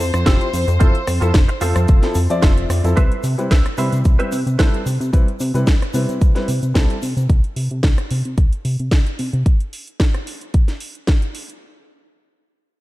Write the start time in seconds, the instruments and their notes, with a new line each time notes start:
Already playing: violin section C5
0.00 analog synth bass F2, shaker
0.14 analog synth bass F2, cross-stick, closed hi-hat, shaker
0.26 analog synth bass F1, grand piano F3 C4 E4 G4, clean electric guitar F4 A4 C5 E5, kick, snare, closed hi-hat, shaker
0.41 closed hi-hat
0.53 analog synth bass F2, open hi-hat, shaker
0.68 analog synth bass F2, muted clean electric guitar stroke, closed hi-hat, shaker
0.80 analog synth bass F1, grand piano F3 C4 E4 A4, clean electric guitar F4 A4 C5 E5, kick, closed hi-hat, shaker
0.95 closed hi-hat
1.07 analog synth bass F2, cross-stick, open hi-hat, shaker
1.21 analog synth bass F2, grand piano F3 C4 E4 A4, clean electric guitar F4 A4 C5 E5, closed hi-hat, shaker
1.34 analog synth bass F1, kick, snare, closed hi-hat, shaker
1.48 muted clean electric guitar stroke, closed hi-hat
1.61 analog synth bass F2, grand piano F3 C4 A4, clean electric guitar F4 A4 C5 E5, open hi-hat, shaker
1.76 analog synth bass F2, cross-stick, closed hi-hat, shaker
1.88 analog synth bass F1, kick, closed hi-hat, shaker
2.02 grand piano F3 C4 E4 A4, snare, closed hi-hat
2.14 analog synth bass F2, open hi-hat, shaker
2.29 analog synth bass F2, grand piano F3 C4 D5 E5, closed hi-hat, shaker
2.42 analog synth bass F1, clean electric guitar F4 A4 C5 E5, kick, snare, closed hi-hat, shaker
2.58 closed hi-hat
2.70 analog synth bass F2, cross-stick, open hi-hat, shaker
2.84 analog synth bass F2, grand piano F3 C4 E4 A4, muted clean electric guitar stroke, closed hi-hat, shaker
2.97 analog synth bass C2, grand piano G3 C4 E4 B4, clean electric guitar B4 C5 E5, kick, closed hi-hat, shaker
3.12 closed hi-hat
3.23 analog synth bass C3, open hi-hat, shaker
3.38 analog synth bass C3, grand piano G3 C4 E4 B4, closed hi-hat, shaker
3.51 analog synth bass C2, clean electric guitar B4 C5 E5, kick, snare, closed hi-hat, shaker
3.66 cross-stick, closed hi-hat
3.78 analog synth bass C3, grand piano G3 C4 E4 B5, clean electric guitar B4 C5 E5, open hi-hat, shaker
3.92 analog synth bass C3, closed hi-hat, shaker
4.04 analog synth bass C2, kick, closed hi-hat, shaker
4.19 grand piano G3 C4 E4 B4, clean electric guitar B4 C5 E5, closed hi-hat
4.32 analog synth bass C3, open hi-hat, shaker
4.46 analog synth bass C3, closed hi-hat, shaker
4.58 analog synth bass C2, grand piano G3 C4 E4 A4, clean electric guitar B4 C5 E5, kick, snare, closed hi-hat, shaker
4.74 closed hi-hat
4.86 analog synth bass C3, open hi-hat, shaker
5.00 analog synth bass C3, closed hi-hat, shaker
5.13 analog synth bass C2, grand piano G3 C4 E4 B4, kick, closed hi-hat, shaker
5.28 closed hi-hat
5.40 analog synth bass C3, open hi-hat, shaker
5.54 analog synth bass C3, grand piano G3 C4 E4 B4, closed hi-hat, shaker
5.67 analog synth bass C2, kick, snare, closed hi-hat, shaker
5.82 cross-stick, closed hi-hat
5.94 analog synth bass C3, grand piano G3 C4 E4 B4, open hi-hat, shaker
6.09 analog synth bass C3, closed hi-hat, shaker
6.21 analog synth bass C2, kick, closed hi-hat, shaker
6.35 grand piano G3 C4 E4 B4, snare, closed hi-hat
6.48 analog synth bass C3, open hi-hat, shaker
6.62 analog synth bass C3, closed hi-hat, shaker
6.74 analog synth bass C2, grand piano G3 C4 E4 A4, kick, snare, closed hi-hat, shaker
6.90 closed hi-hat
7.02 analog synth bass C3, open hi-hat, shaker
7.17 analog synth bass C3, closed hi-hat, shaker
7.29 analog synth bass C2, kick, closed hi-hat
7.44 closed hi-hat
7.56 analog synth bass C3, open hi-hat
7.71 analog synth bass C3, closed hi-hat
7.83 analog synth bass C2, kick, snare, closed hi-hat
7.98 cross-stick, closed hi-hat
8.11 analog synth bass C3, open hi-hat
8.25 analog synth bass C3, closed hi-hat
8.38 analog synth bass C2, kick, closed hi-hat
8.53 closed hi-hat
8.65 analog synth bass C3, open hi-hat
8.79 analog synth bass C3, closed hi-hat
8.91 analog synth bass C2, kick, snare, closed hi-hat
9.07 closed hi-hat
9.19 analog synth bass C3, open hi-hat
9.33 analog synth bass C3, closed hi-hat
9.46 kick, closed hi-hat
9.60 closed hi-hat
9.73 open hi-hat
9.87 closed hi-hat
10.00 kick, snare, closed hi-hat
10.14 cross-stick, closed hi-hat
10.27 open hi-hat
10.41 closed hi-hat
10.54 kick, closed hi-hat
10.68 snare, closed hi-hat
10.80 open hi-hat
10.95 closed hi-hat
11.07 kick, snare, closed hi-hat
11.22 closed hi-hat
11.35 open hi-hat
11.50 closed hi-hat